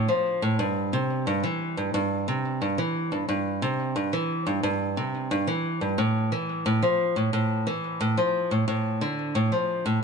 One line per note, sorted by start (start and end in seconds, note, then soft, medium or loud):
0.08 0.41 F3 medium
0.42 0.57 A2 medium
0.59 0.91 G2 medium
0.93 1.25 C3 medium
1.27 1.42 G2 medium
1.43 1.75 E3 medium
1.77 1.92 G2 medium
1.94 2.26 G2 medium
2.28 2.60 C3 medium
2.62 2.77 G2 medium
2.78 3.10 E3 medium
3.12 3.27 G2 medium
3.29 3.61 G2 medium
3.62 3.94 C3 medium
3.96 4.11 G2 medium
4.13 4.45 E3 medium
4.47 4.62 G2 medium
4.63 4.95 G2 medium
4.97 5.29 C3 medium
5.31 5.46 G2 medium
5.47 5.80 E3 medium
5.81 5.97 G2 medium
5.98 6.30 A2 medium
6.32 6.64 E3 medium
6.66 6.81 A2 medium
6.82 7.15 F3 medium
7.16 7.31 A2 medium
7.33 7.65 A2 medium
7.67 7.99 E3 medium
8.01 8.16 A2 medium
8.17 8.49 F3 medium
8.51 8.66 A2 medium
8.68 9.00 A2 medium
9.01 9.34 D3 medium
9.35 9.50 A2 medium
9.52 9.84 F3 medium
9.86 10.01 A2 medium